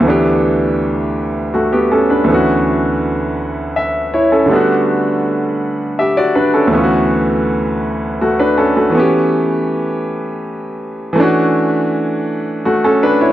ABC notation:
X:1
M:6/8
L:1/16
Q:3/8=54
K:D
V:1 name="Grand piano"
z8 [A,F] [B,G] [CA] [DB]- | [DB] z6 z e2 [Ec] [CA]- | [CA] z6 z [Ge] [Fd] [DB] [CA]- | [CA] z6 z [A,F] [DB] [CA] [A,F]- |
[A,F] z8 z3 | z8 [A,F] [CA] [DB] [Ec] |]
V:2 name="Grand piano"
[D,,E,A,B,DG]12 | [D,,E,A,B,CF]12 | [D,G,A,B,DF]12 | [D,,E,A,B,C=F^F]12 |
[E,A,B,CG]12 | [E,A,CDF]12 |]